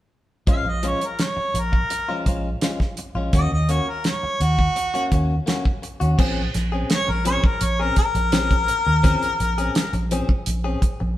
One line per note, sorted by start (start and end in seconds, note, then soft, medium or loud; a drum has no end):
0.47 0.61 A#1 medium
0.47 0.65 F3 medium
0.47 0.65 G#3 medium
0.47 0.65 C#4 medium
0.47 0.64 F4 medium
0.47 0.70 F5 medium
0.47 kick medium
0.47 closed hi-hat medium
0.64 0.92 A#1 medium
0.64 0.88 D#5 medium
0.64 muted clean electric guitar stroke soft
0.83 1.01 F3 medium
0.83 1.01 G#3 medium
0.83 1.00 C#4 medium
0.83 1.00 F4 medium
0.83 1.07 C#5 medium
0.83 closed hi-hat soft
1.01 muted clean electric guitar stroke soft
1.01 closed hi-hat soft
1.05 1.24 A#4 medium
1.19 1.61 C#5 medium
1.19 snare medium
1.19 closed hi-hat medium
1.37 muted clean electric guitar stroke soft
1.37 muted fingered electric bass stroke soft
1.54 1.81 A#1 medium
1.54 muted clean electric guitar stroke soft
1.54 closed hi-hat medium
1.59 2.26 A#4 medium
1.72 muted clean electric guitar stroke soft
1.72 kick medium
1.90 muted clean electric guitar stroke soft
1.90 closed hi-hat medium
2.09 2.25 F3 medium
2.09 2.26 G#3 soft
2.09 2.27 C#4 soft
2.09 2.26 F4 medium
2.26 2.53 A#1 medium
2.26 2.48 F3 medium
2.26 2.48 G#3 medium
2.26 2.49 C#4 medium
2.26 2.49 F4 medium
2.26 kick medium
2.26 closed hi-hat soft
2.61 2.80 F3 medium
2.61 2.80 G#3 medium
2.61 2.80 C#4 medium
2.61 2.79 F4 medium
2.61 snare medium
2.61 closed hi-hat medium
2.80 muted clean electric guitar stroke soft
2.80 kick medium
2.80 snare soft
2.97 muted clean electric guitar stroke soft
2.97 closed hi-hat soft
3.15 3.28 A#1 medium
3.15 3.33 G#3 soft
3.15 3.33 C#4 soft
3.15 3.33 F4 medium
3.33 3.47 D#2 medium
3.33 3.52 A#3 medium
3.33 3.51 C#4 medium
3.33 3.51 F#4 medium
3.33 3.52 D#5 medium
3.33 kick loud
3.33 closed hi-hat medium
3.52 3.79 D#2 medium
3.52 3.72 D#5 medium
3.52 muted clean electric guitar stroke soft
3.69 3.87 A#3 medium
3.69 3.88 C#4 medium
3.69 3.86 F#4 medium
3.69 3.90 C#5 medium
3.69 closed hi-hat soft
3.88 4.09 A#4 medium
3.88 muted clean electric guitar stroke soft
4.04 4.43 C#5 medium
4.04 snare medium
4.04 closed hi-hat medium
4.23 muted clean electric guitar stroke soft
4.23 muted fingered electric bass stroke soft
4.40 4.67 D#2 medium
4.40 5.11 F#4 loud
4.40 muted clean electric guitar stroke soft
4.40 closed hi-hat medium
4.59 muted clean electric guitar stroke soft
4.59 kick medium
4.76 muted clean electric guitar stroke soft
4.76 closed hi-hat medium
4.94 5.10 A#3 soft
4.94 5.11 C#4 medium
4.94 5.12 F#4 medium
4.94 closed hi-hat soft
5.12 5.39 D#2 medium
5.12 5.33 A#3 medium
5.12 5.34 C#4 medium
5.12 5.35 F#4 medium
5.12 kick medium
5.12 closed hi-hat medium
5.46 5.65 A#3 medium
5.46 5.65 C#4 medium
5.46 5.64 F#4 medium
5.46 snare medium
5.46 closed hi-hat medium
5.65 muted clean electric guitar stroke soft
5.65 kick medium
5.82 muted clean electric guitar stroke soft
5.82 closed hi-hat soft
6.00 6.14 D#2 medium
6.00 6.18 C#4 soft
6.00 6.18 F#4 medium
6.00 closed hi-hat soft
6.18 6.46 A#1 loud
6.18 6.40 F3 medium
6.18 6.41 C4 medium
6.18 6.41 C#4 medium
6.18 6.41 G#4 loud
6.18 kick loud
6.18 crash medium
6.54 6.82 A#1 medium
6.54 muted clean electric guitar stroke soft
6.54 snare soft
6.54 closed hi-hat medium
6.72 6.90 C4 soft
6.72 6.90 C#4 soft
6.72 6.90 G#4 medium
6.90 7.11 C#5 loud
6.90 muted clean electric guitar stroke soft
6.90 snare loud
6.90 closed hi-hat medium
7.08 7.35 A#1 medium
7.08 7.26 A#4 medium
7.08 muted clean electric guitar stroke soft
7.25 7.44 F3 medium
7.25 7.44 C4 medium
7.25 7.44 C#4 medium
7.25 7.43 G#4 medium
7.25 7.47 C#5 medium
7.25 closed hi-hat medium
7.44 7.64 A#4 medium
7.44 muted clean electric guitar stroke soft
7.44 kick medium
7.61 7.88 A#1 medium
7.61 7.82 C#5 medium
7.61 closed hi-hat medium
7.80 7.97 C4 soft
7.80 7.97 C#4 soft
7.80 7.97 G#4 soft
7.80 7.97 A#4 medium
7.96 10.07 A#4 loud
7.96 muted clean electric guitar stroke soft
7.96 kick medium
7.96 closed hi-hat medium
8.15 8.68 A#1 medium
8.15 muted clean electric guitar stroke soft
8.15 closed hi-hat soft
8.32 8.54 F3 medium
8.32 8.55 C4 medium
8.32 8.55 C#4 medium
8.32 8.55 G#4 medium
8.32 snare loud
8.32 closed hi-hat medium
8.51 kick medium
8.51 closed hi-hat soft
8.68 muted clean electric guitar stroke soft
8.68 closed hi-hat medium
8.87 9.13 D#2 medium
8.87 muted clean electric guitar stroke medium
9.03 9.25 F3 medium
9.03 9.26 C4 medium
9.03 9.26 C#4 medium
9.03 9.26 G#4 medium
9.03 kick loud
9.03 closed hi-hat medium
9.23 closed hi-hat soft
9.40 9.67 A#1 medium
9.40 muted clean electric guitar stroke soft
9.40 closed hi-hat medium
9.58 9.75 C4 soft
9.58 9.76 C#4 soft
9.58 9.75 G#4 medium
9.58 closed hi-hat soft
9.75 muted clean electric guitar stroke soft
9.75 snare loud
9.75 closed hi-hat medium
9.93 10.20 A#1 medium
9.93 muted clean electric guitar stroke soft
9.93 closed hi-hat soft
10.11 10.29 F3 medium
10.11 10.29 C4 medium
10.11 10.29 C#4 medium
10.11 10.28 G#4 medium
10.11 closed hi-hat medium
10.29 muted clean electric guitar stroke soft
10.29 kick medium
10.46 10.74 A#1 medium
10.46 closed hi-hat medium
10.64 10.81 C4 soft
10.64 10.81 C#4 medium
10.64 10.82 G#4 medium
10.82 muted clean electric guitar stroke soft
10.82 kick medium
10.82 closed hi-hat medium
11.00 11.18 A#1 medium
11.00 muted clean electric guitar stroke medium